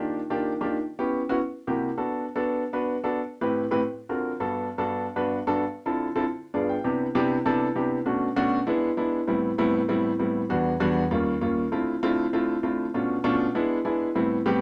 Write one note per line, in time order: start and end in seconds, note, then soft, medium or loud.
0.00 0.19 D#3 medium
0.00 0.19 A#3 medium
0.00 0.19 D4 medium
0.00 0.19 F4 medium
0.00 0.19 G4 medium
0.30 0.52 D#3 medium
0.30 0.52 A#3 medium
0.30 0.52 D4 medium
0.30 0.52 F4 medium
0.30 0.52 G4 medium
0.61 0.76 D#3 medium
0.61 0.76 A#3 medium
0.61 0.76 D4 medium
0.61 0.76 F4 medium
0.61 0.76 G4 medium
0.99 1.20 B3 medium
0.99 1.20 C#4 medium
0.99 1.20 E4 medium
0.99 1.20 G4 medium
1.29 1.37 B3 medium
1.29 1.37 C#4 medium
1.29 1.37 E4 medium
1.29 1.37 F#4 loud
1.67 1.88 C3 medium
1.67 1.88 A#3 medium
1.67 1.88 E4 medium
1.67 1.88 F#4 medium
1.67 1.88 G4 medium
1.97 2.24 B3 medium
1.97 2.24 D4 medium
1.97 2.24 F#4 medium
1.97 2.24 A4 medium
2.36 2.62 B3 medium
2.36 2.62 D4 medium
2.36 2.62 F#4 medium
2.36 2.62 A4 medium
2.73 2.94 B3 medium
2.73 2.94 D4 medium
2.73 2.95 F#4 medium
2.73 2.95 B4 medium
3.04 3.19 B3 medium
3.04 3.19 D4 medium
3.04 3.19 F#4 medium
3.04 3.19 A4 medium
3.41 3.63 A2 medium
3.41 3.63 C4 medium
3.41 3.63 E4 medium
3.41 3.63 G4 medium
3.41 3.63 B4 medium
3.71 3.79 A2 medium
3.71 3.79 C4 medium
3.71 3.79 E4 medium
3.71 3.79 G4 medium
3.71 3.79 B4 loud
4.09 4.31 D3 medium
4.09 4.31 C4 medium
4.09 4.31 F4 medium
4.09 4.31 F#4 medium
4.09 4.31 A#4 medium
4.40 4.67 G2 medium
4.40 4.67 B3 medium
4.40 4.67 D4 medium
4.40 4.67 F#4 medium
4.40 4.67 A4 medium
4.78 5.05 G2 medium
4.78 5.05 B3 medium
4.78 5.05 D4 medium
4.78 5.05 F#4 medium
4.78 5.05 A4 medium
5.16 5.38 G2 medium
5.16 5.38 B3 medium
5.16 5.38 D4 medium
5.16 5.38 F#4 medium
5.16 5.38 B4 medium
5.47 5.62 G2 medium
5.47 5.62 B3 medium
5.47 5.62 D4 medium
5.47 5.62 F#4 medium
5.47 5.62 A4 loud
5.86 6.07 D3 medium
5.86 6.07 C4 medium
5.86 6.07 E4 medium
5.86 6.07 F4 medium
5.86 6.07 A4 medium
6.16 6.23 D3 medium
6.16 6.23 C4 medium
6.16 6.23 E4 medium
6.16 6.23 F4 medium
6.16 6.23 A4 loud
6.54 6.75 G2 medium
6.54 6.75 B3 medium
6.54 6.75 D4 medium
6.54 6.75 F4 medium
6.54 6.75 G#4 medium
6.54 6.68 D5 medium
6.69 6.83 G5 medium
6.84 7.06 C3 medium
6.84 7.06 B3 medium
6.84 7.06 D4 medium
6.84 7.06 E4 medium
6.84 7.06 G4 medium
7.15 7.36 C3 loud
7.15 7.36 B3 medium
7.15 7.36 D4 medium
7.15 7.36 E4 medium
7.15 7.36 G4 loud
7.45 7.67 C3 medium
7.45 7.67 B3 medium
7.45 7.67 D4 medium
7.45 7.67 E4 medium
7.45 7.67 A4 loud
7.75 7.97 C3 medium
7.75 7.97 B3 medium
7.75 7.97 D4 medium
7.75 7.97 E4 medium
7.75 7.97 G4 medium
8.06 8.27 B2 medium
8.06 8.27 A3 medium
8.06 8.27 C#4 medium
8.06 8.27 D4 medium
8.06 8.27 F#4 medium
8.36 8.58 B2 loud
8.36 8.58 A3 loud
8.36 8.58 C#4 medium
8.36 8.58 D4 loud
8.36 8.58 F#4 loud
8.67 8.88 G#3 medium
8.67 8.88 B3 medium
8.67 8.88 D4 medium
8.67 8.88 E4 loud
8.97 9.19 G#3 medium
8.97 9.19 B3 medium
8.97 9.19 D4 medium
8.97 9.19 E4 loud
9.27 9.49 A2 medium
9.27 9.49 G3 medium
9.27 9.49 B3 medium
9.27 9.49 C4 medium
9.27 9.49 E4 medium
9.58 9.80 A2 loud
9.58 9.80 G3 medium
9.58 9.80 B3 loud
9.58 9.80 C4 loud
9.58 9.80 E4 loud
9.88 10.10 A2 medium
9.88 10.10 G3 medium
9.88 10.10 B3 medium
9.88 10.10 C4 medium
9.88 10.10 E4 loud
10.19 10.41 A2 medium
10.19 10.41 G3 medium
10.19 10.41 B3 medium
10.19 10.41 C4 medium
10.19 10.41 E4 medium
10.50 10.71 E2 medium
10.50 10.71 G3 medium
10.50 10.71 B3 medium
10.50 10.71 D4 medium
10.50 10.71 F#4 loud
10.80 11.02 E2 loud
10.80 11.02 G3 loud
10.80 11.02 B3 medium
10.80 11.02 D4 medium
10.80 11.02 F#4 loud
11.11 11.33 D#2 loud
11.11 11.32 G3 medium
11.11 11.33 A#3 medium
11.11 11.33 C#4 medium
11.11 11.33 F4 loud
11.41 11.63 D#2 medium
11.41 11.63 G3 medium
11.41 11.63 A#3 medium
11.41 11.63 C#4 medium
11.41 11.63 F4 medium
11.72 11.93 D3 medium
11.72 11.93 A3 medium
11.72 11.93 C4 medium
11.72 11.93 E4 medium
11.72 11.94 F4 loud
12.03 12.24 D3 loud
12.03 12.24 A3 medium
12.03 12.24 C4 medium
12.03 12.24 E4 loud
12.03 12.24 F4 loud
12.33 12.54 D3 medium
12.33 12.55 A3 medium
12.33 12.55 C4 medium
12.33 12.55 E4 medium
12.33 12.55 F4 loud
12.63 12.85 D3 medium
12.63 12.85 A3 medium
12.63 12.85 C4 medium
12.63 12.85 E4 medium
12.63 12.85 F4 medium
12.94 13.16 B2 medium
12.94 13.16 A3 medium
12.94 13.16 C#4 medium
12.94 13.16 D4 medium
12.94 13.16 F4 medium
13.24 13.46 B2 loud
13.24 13.46 A3 medium
13.24 13.46 C#4 loud
13.24 13.46 D4 loud
13.24 13.46 F4 loud
13.55 13.76 G#3 medium
13.55 13.76 B3 medium
13.55 13.76 D4 medium
13.55 13.76 E4 loud
13.85 14.07 G#3 medium
13.85 14.07 B3 medium
13.85 14.07 D4 medium
13.85 14.07 E4 medium
13.85 14.13 G#5 medium
14.15 14.37 A2 medium
14.15 14.37 G3 medium
14.15 14.37 B3 medium
14.15 14.37 C4 medium
14.15 14.37 E4 loud
14.46 14.61 A2 loud
14.46 14.61 G3 loud
14.46 14.61 B3 loud
14.46 14.61 C4 medium
14.46 14.61 G4 loud